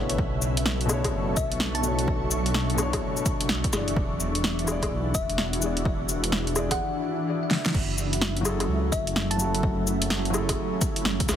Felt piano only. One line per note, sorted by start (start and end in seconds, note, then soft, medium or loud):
0.00 0.84 B2 medium
0.00 0.20 C#3 medium
0.00 0.86 A3 medium
0.00 0.20 C#4 medium
0.00 0.87 D4 medium
0.00 0.88 E4 medium
0.00 0.20 B4 loud
0.00 0.89 C#5 medium
0.86 1.78 B2 medium
0.86 1.81 A3 medium
0.86 1.82 D4 medium
0.91 1.83 E4 medium
0.91 1.84 C#5 loud
1.80 2.73 B2 medium
1.80 2.75 A3 medium
1.84 2.76 D4 medium
1.84 2.77 E4 medium
1.88 2.78 C#5 medium
2.75 3.69 B2 medium
2.75 3.70 A3 medium
2.79 3.71 D4 medium
2.79 3.70 E4 medium
2.79 3.73 C#5 loud
3.69 4.62 E3 medium
3.69 4.65 E4 medium
3.74 4.66 G#4 medium
3.74 4.68 D5 medium
4.64 5.57 E3 medium
4.64 5.59 E4 medium
4.69 5.61 G#4 medium
4.69 5.62 D5 loud
5.58 6.52 E3 medium
5.58 6.54 E4 medium
5.63 6.55 G#4 medium
5.63 6.56 D5 medium
6.55 6.79 E3 medium
6.55 6.80 E4 medium
6.55 6.80 G#4 medium
6.55 6.81 D5 loud
8.41 9.35 F#3 medium
8.41 9.37 E4 medium
8.46 9.38 G#4 medium
8.46 9.40 A4 loud
9.36 10.29 F#3 medium
9.36 10.31 E4 medium
9.41 10.33 F#4 medium
9.41 10.34 A4 medium
10.30 11.25 F#3 loud
10.30 11.26 E4 medium
10.35 11.27 G#4 medium
10.35 11.29 A4 loud
11.25 11.36 C#3 medium
11.25 11.36 C#4 medium
11.31 11.36 E4 medium